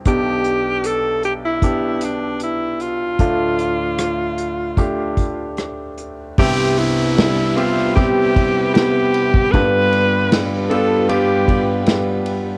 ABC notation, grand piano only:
X:1
M:4/4
L:1/8
Q:1/4=76
K:C
V:1 name="Grand piano"
[B,DG]4 [B,DG]4 | [A,DF]4 [A,DG]4 | [B,CEG]3 [B,CGe] [B,CEG]4 | [_B,=B,DFG]3 [B,DFA] [B,DFG]4 |]
V:2 name="Grand piano" clef=bass
[B,,,B,,]8 | [D,,A,,]8 | [C,,G,,]8 | [G,,D,]8 |]